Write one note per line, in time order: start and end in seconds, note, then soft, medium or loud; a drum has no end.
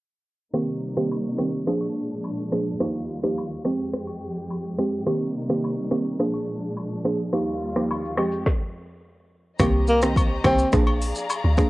0.54 1.66 C3 medium
0.54 0.93 D#3 medium
0.54 1.66 G3 medium
0.54 1.66 A#3 medium
0.54 0.93 A#3 medium
0.54 0.94 C4 medium
0.54 1.66 D#4 medium
0.54 0.94 G4 loud
0.54 finger snap medium
0.54 cross-stick medium
0.54 high agogo medium
0.97 1.35 D#3 medium
0.97 1.36 A#3 medium
0.97 1.36 C4 medium
0.97 1.36 G4 medium
0.97 finger snap medium
0.97 cross-stick loud
1.11 high agogo medium
1.11 low woodblock medium
1.38 1.65 D#3 medium
1.38 1.65 A#3 medium
1.38 1.65 C4 medium
1.38 1.65 G4 medium
1.38 finger snap medium
1.38 cross-stick medium
1.38 high agogo medium
1.67 2.79 A#2 medium
1.67 2.45 F3 loud
1.67 2.79 F3 medium
1.67 2.79 G#3 medium
1.67 2.46 A#3 medium
1.67 2.79 D4 medium
1.67 2.46 D4 medium
1.67 2.46 G#4 loud
1.67 finger snap medium
1.67 cross-stick medium
1.81 high agogo medium
2.24 high agogo medium
2.24 low woodblock medium
2.52 2.68 F3 medium
2.52 2.68 A#3 medium
2.52 2.68 D4 medium
2.52 2.68 G#4 medium
2.52 finger snap medium
2.52 cross-stick medium
2.80 3.64 D#2 medium
2.80 3.64 D#3 medium
2.80 3.20 F3 medium
2.80 3.64 G3 medium
2.80 3.20 A#3 medium
2.80 3.20 D#4 medium
2.80 3.64 F4 medium
2.80 3.20 G4 loud
2.80 finger snap medium
2.80 cross-stick medium
2.80 high agogo medium
2.80 shaker medium
2.95 shaker medium
3.08 shaker soft
3.23 3.62 F3 medium
3.23 3.62 A#3 medium
3.23 3.62 D#4 medium
3.23 3.62 G4 medium
3.23 finger snap medium
3.23 cross-stick medium
3.23 shaker medium
3.38 high agogo medium
3.38 low woodblock medium
3.38 shaker medium
3.52 shaker soft
3.65 5.05 F2 medium
3.65 3.91 F3 medium
3.65 5.05 F3 medium
3.65 3.91 G#3 medium
3.65 5.05 G#3 medium
3.65 3.91 C4 medium
3.65 5.05 G4 medium
3.65 3.92 G4 medium
3.65 finger snap medium
3.65 cross-stick medium
3.65 high agogo medium
3.65 shaker medium
3.79 shaker medium
3.93 finger snap medium
3.93 cross-stick medium
3.93 shaker medium
4.07 high agogo medium
4.07 shaker medium
4.22 shaker medium
4.36 shaker medium
4.50 high agogo medium
4.50 low woodblock medium
4.50 shaker medium
4.64 shaker medium
4.78 4.94 F3 medium
4.78 4.94 G#3 medium
4.78 4.94 C4 medium
4.78 4.94 G4 medium
4.78 finger snap medium
4.78 cross-stick medium
4.78 shaker soft
4.92 shaker medium
5.06 6.19 C3 medium
5.06 5.46 D#3 medium
5.06 6.19 G3 medium
5.06 5.46 A#3 medium
5.06 6.19 A#3 medium
5.06 5.46 C4 medium
5.06 6.19 D#4 medium
5.06 5.46 G4 loud
5.06 finger snap medium
5.06 cross-stick loud
5.06 high agogo medium
5.06 shaker medium
5.21 shaker medium
5.34 shaker soft
5.49 5.88 D#3 medium
5.49 5.88 A#3 medium
5.49 5.88 C4 medium
5.49 5.88 G4 medium
5.49 finger snap medium
5.49 cross-stick medium
5.49 shaker medium
5.64 high agogo medium
5.64 low woodblock medium
5.64 shaker medium
5.79 shaker soft
5.91 6.18 D#3 medium
5.91 6.18 A#3 medium
5.91 6.18 C4 medium
5.91 6.18 G4 medium
5.91 finger snap medium
5.91 cross-stick medium
5.91 high agogo medium
5.91 shaker medium
6.05 shaker medium
6.19 7.32 A#2 medium
6.19 6.98 F3 medium
6.19 7.32 F3 medium
6.19 7.32 G#3 medium
6.19 6.98 A#3 medium
6.19 7.32 D4 medium
6.19 6.98 D4 medium
6.19 6.98 G#4 loud
6.19 finger snap medium
6.19 cross-stick medium
6.19 shaker medium
6.34 high agogo medium
6.34 shaker medium
6.49 shaker medium
6.62 shaker medium
6.77 high agogo medium
6.77 low woodblock medium
6.77 shaker medium
6.91 shaker medium
7.05 7.20 F3 medium
7.05 7.20 A#3 medium
7.05 7.21 D4 medium
7.05 7.21 G#4 medium
7.05 finger snap medium
7.05 cross-stick medium
7.05 shaker soft
7.19 shaker medium
7.33 8.17 D#2 medium
7.33 8.17 D#3 medium
7.33 7.73 F3 medium
7.33 8.17 G3 medium
7.33 7.73 A#3 medium
7.33 7.73 D#4 medium
7.33 8.17 F4 medium
7.33 7.73 G4 medium
7.33 finger snap medium
7.33 cross-stick loud
7.33 high agogo medium
7.33 shaker medium
7.48 shaker medium
7.61 shaker soft
7.75 8.15 F3 medium
7.75 8.15 A#3 medium
7.75 8.15 D#4 medium
7.75 8.15 G4 medium
7.75 finger snap medium
7.75 cross-stick loud
7.75 shaker medium
7.90 high agogo medium
7.90 low woodblock medium
7.90 shaker medium
8.05 shaker soft
8.17 8.46 F2 medium
8.17 8.46 F3 medium
8.17 8.44 F3 medium
8.17 8.46 G#3 medium
8.17 8.44 G#3 medium
8.17 8.44 C4 medium
8.17 8.46 G4 medium
8.17 8.44 G4 medium
8.17 finger snap medium
8.17 cross-stick medium
8.17 high agogo medium
8.17 shaker medium
8.32 shaker medium
8.46 kick loud
8.46 snare medium
9.60 10.41 C2 loud
9.60 9.99 D#3 medium
9.60 9.99 A#3 medium
9.60 9.99 C4 medium
9.60 10.72 G4 medium
9.60 9.99 G4 loud
9.60 10.72 C5 medium
9.60 10.72 D#5 medium
9.60 10.72 A#5 medium
9.60 finger snap medium
9.60 kick loud
9.60 cross-stick loud
9.60 high agogo medium
9.60 shaker medium
9.87 10.01 A#3 medium
9.87 shaker soft
10.02 10.41 D#3 medium
10.02 10.41 A#3 medium
10.02 10.42 C4 medium
10.02 10.42 G4 medium
10.02 finger snap medium
10.02 cross-stick loud
10.02 shaker medium
10.16 kick loud
10.16 high agogo medium
10.16 shaker medium
10.44 10.64 C2 medium
10.44 10.71 D#3 medium
10.44 10.71 A#3 medium
10.44 10.71 C4 medium
10.44 10.69 C4 medium
10.44 10.71 G4 medium
10.44 finger snap medium
10.44 kick medium
10.44 cross-stick loud
10.44 high agogo medium
10.44 shaker medium
10.59 shaker medium
10.73 11.13 A#1 loud
10.73 11.51 F3 loud
10.73 11.51 A#3 medium
10.73 11.51 D4 medium
10.73 11.70 G#4 medium
10.73 11.51 G#4 loud
10.73 11.70 D5 medium
10.73 11.70 F5 medium
10.73 11.70 A#5 medium
10.73 finger snap medium
10.73 kick medium
10.73 cross-stick loud
10.73 shaker medium
10.87 high agogo medium
11.02 open hi-hat medium
11.02 shaker medium
11.15 shaker medium
11.30 high agogo medium
11.30 low woodblock medium
11.30 shaker medium
11.44 11.64 D2 medium
11.58 11.70 F3 medium
11.58 11.70 A#3 medium
11.58 11.70 D4 medium
11.58 11.70 G#4 medium
11.58 finger snap medium
11.58 kick medium
11.58 cross-stick medium
11.58 shaker soft